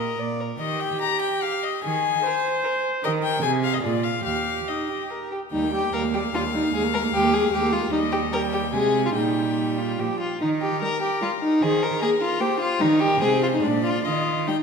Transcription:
Already playing: A#2 A#4 D#5
0.19 A#2 D5
0.40 A#4
0.59 D#3 G4 D#5
0.80 G5
1.01 G4 A#5
1.22 G5
1.42 G4 F5
1.63 D#5
1.84 D#3 G#4 G#5
2.25 A#4 C5
2.64 A#4
3.04 D#3 G4 A#4 D#5
3.23 G5
3.43 C3 G#4 G#5
3.63 F5
3.74 D#5
3.82 A#2 F4 G#4 D5
4.04 F5
4.25 D#2 G4 F5
4.68 D#4 D#5
4.89 G4
5.10 A#4
5.31 G4
5.52 D#2 G3 D#4 G5
5.63 A#3
5.72 G3 G4
5.83 A#3
5.93 D#2 G3 A#4 F5
6.04 A#3
6.14 G3 G4
6.25 A#3
6.34 D#2 G3 F4
6.44 A#3
6.54 G3 D#4
6.64 A#3
6.74 D#2 G#3 G#4
6.84 A#3
6.93 G#3 A#4
7.03 A#3
7.13 D#2 G#3 G4
7.24 A#3
7.33 G#3 G#4
7.43 A#3
7.52 D#2 G#3 G4
7.62 A#3
7.72 G#3 F4
7.81 A#3
7.91 D#2 G3 D#4 D#5
8.12 G4
8.32 G3 A#4 G5
8.53 G4
8.73 C3 G#3 G#4 G#5
9.06 F4
9.15 A#2 G3 D#4 G5
9.78 F4
9.98 A#2 F3 G4
10.20 F4
10.40 D#3 D#4 A#4
10.61 G4
10.81 G3 A#4
11.02 G4
11.21 G3 F4
11.42 D#4
11.61 D#3 G#4 C5
11.83 A#4
12.01 A#3 G#4 A#4
12.21 F4
12.40 A#3 G4 C5
12.60 F4
12.80 D#3 G3 D#4 A#4
13.00 G4
13.21 C3 G#3 G#4 C5
13.43 F4
13.54 D#4
13.62 A#2 G#3 D4 D5
13.84 F4
14.05 D#3 F4 D#5
14.48 G3 D#4 G5

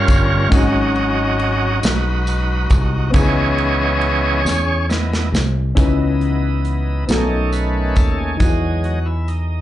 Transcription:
Already playing: G3 A#3 C#4 D#4 F4 G4 A#4 C#5 F5
0.08 G1, kick, ride, tambourine
0.49 G#1 G#2 G#3 C#4 D#4, kick, ride
0.53 F#3 C#4 D#4 F#4 G#4 D#5, tambourine
0.96 ride
1.39 ride
1.83 B1 D#4 F#4 B4, snare, ride, tambourine
2.27 ride, tambourine
2.70 C2, kick, ride, tambourine
3.10 C#2 C#3 E3 B3 C#4 D#4, kick, ride
3.14 B3 C#4 E4 G#4 C#5 D#5, tambourine
3.58 ride
4.01 ride
4.45 E2, snare, tambourine
4.89 E3 B3 D#5, snare, tambourine
5.13 snare
5.32 C2, snare, tambourine
5.75 C#2 C#3 E3 B3 C#4 D#4 E4 B4 D#5, kick, closed hi-hat, tambourine
6.21 closed hi-hat
6.65 closed hi-hat
7.07 B1 B2 D#3 A3 B3 C#4 D#4 F#4 A4, snare, closed hi-hat, tambourine
7.11 D#4
7.52 B4, closed hi-hat, tambourine
7.96 D#2 A4, kick, closed hi-hat, tambourine
8.11 A4
8.18 G#4
8.37 E2 E3 F#3 G#3 D#4 E4, kick, closed hi-hat, tambourine
8.42 F#4 G#4 D#5
8.84 F#4, closed hi-hat
9.06 E4
9.28 D#4, closed hi-hat

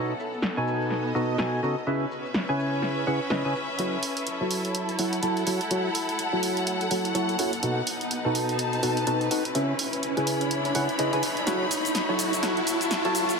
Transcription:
Already playing: B2 B3 D#4 F#4 A4 D#5 F#5
0.20 cabasa
0.34 cabasa
0.42 snare, cabasa
0.57 B2 B3 D#4 F#4 A4 G#5
0.68 cabasa
0.82 D#5, cabasa
0.90 snare, cabasa
1.15 B2 B3 D#4 F#4 A4 D#5, cabasa
1.30 cabasa
1.38 B2 B3 D#4 F#4 A4 G#5, snare, cabasa
1.63 C#3 B3 D#4 F#4 A4 D#5, cabasa
1.78 cabasa
1.87 C#3 C#4 E4 G#4 B4 E5, cabasa
1.98 B4
2.12 E5, cabasa
2.26 cabasa
2.34 snare, cabasa
2.49 C#3 C#4 E4 G#4 B4 G#5
2.60 cabasa
2.74 cabasa
2.82 snare, cabasa
3.07 C#3 C#4 E4 G#4 B4 F#5, cabasa
3.22 cabasa
3.30 C#3 C#4 E4 G#4 B4 D#5, snare, cabasa
3.45 C#3 C#4 E4 G#4 B4 G#5
3.55 cabasa
3.70 cabasa
3.79 F#1 F#3 E4 F#4 A4 C#5 F#5, closed hi-hat, riser
3.90 A4
4.03 open hi-hat
4.17 closed hi-hat
4.27 closed hi-hat
4.41 F#1 F#3 E4 F#4 A4 C#5 A5
4.51 open hi-hat
4.65 closed hi-hat
4.75 closed hi-hat
4.89 closed hi-hat
4.99 F#1 F#3 E4 F#4 A4 C#5 F#5, open hi-hat
5.13 closed hi-hat
5.23 F#1 F#3 E4 F#4 A4 C#5 A5, closed hi-hat
5.37 closed hi-hat
5.47 F#1 F#3 E4 F#4 A4 C#5 F#5, open hi-hat
5.61 closed hi-hat
5.71 F#1 F#3 E4 F#4 A4 C#5 F#5, closed hi-hat
5.95 open hi-hat
6.09 closed hi-hat
6.19 closed hi-hat
6.33 F#1 F#3 E4 F#4 A4 C#5 A5
6.43 open hi-hat
6.57 closed hi-hat
6.67 closed hi-hat
6.81 closed hi-hat
6.91 F#1 F#3 E4 F#4 A4 C#5 F#5, open hi-hat
7.05 closed hi-hat
7.15 F#1 F#3 E4 F#4 A4 C#5 A5, closed hi-hat
7.29 closed hi-hat
7.39 F#2 E4 F#4 A4 C#5 F#5, open hi-hat
7.53 closed hi-hat
7.63 B1 B2 D#4 F#4 A4 B4 F#5, closed hi-hat
7.77 B4
7.87 open hi-hat
8.01 closed hi-hat
8.11 closed hi-hat
8.25 B1 B2 D#4 F#4 A4 B4 A5
8.35 open hi-hat
8.49 A5, closed hi-hat
8.59 closed hi-hat
8.73 closed hi-hat
8.83 B1 B2 D#4 F#4 A4 B4 F#5, open hi-hat
8.97 closed hi-hat
9.07 B1 B2 D#4 F#4 A4 B4 A5, closed hi-hat
9.21 closed hi-hat
9.31 B1 D#4 F#4 A4 B4 F#5, open hi-hat
9.45 closed hi-hat
9.55 C#2 C#3 C#4 E4 G#4 B4 E5, closed hi-hat
9.79 open hi-hat
9.93 closed hi-hat
10.03 closed hi-hat
10.17 C#2 C#3 C#4 E4 G#4 B4 G#5, closed hi-hat
10.22 C#5
10.27 B5, open hi-hat
10.41 closed hi-hat
10.51 closed hi-hat
10.65 closed hi-hat
10.75 C#2 C#3 C#4 E4 G#4 B4 F#5, open hi-hat
10.89 closed hi-hat
10.99 C#2 C#3 C#4 E4 G#4 B4 D#5, closed hi-hat
11.13 C#2 C#3 C#4 E4 G#4 B4 G#5, closed hi-hat
11.23 open hi-hat
11.37 closed hi-hat
11.47 F#1 F#3 E4 F#4 A4 C#5 F#5, snare, closed hi-hat, cabasa
11.71 open hi-hat, cabasa
11.85 A5, closed hi-hat, cabasa
11.93 E5, snare, closed hi-hat, cabasa
12.09 F#1 F#3 E4 F#4 A4 C#5 A5
12.19 open hi-hat, cabasa
12.33 closed hi-hat, cabasa
12.43 F#1 F#3 E4 F#4 A4 C#5 F#5, snare, closed hi-hat, cabasa
12.57 closed hi-hat
12.67 open hi-hat, cabasa
12.81 closed hi-hat, cabasa
12.91 snare, closed hi-hat, cabasa
13.05 F#1 F#3 E4 F#4 A4 C#5 A5, closed hi-hat
13.15 open hi-hat, cabasa
13.29 closed hi-hat, cabasa

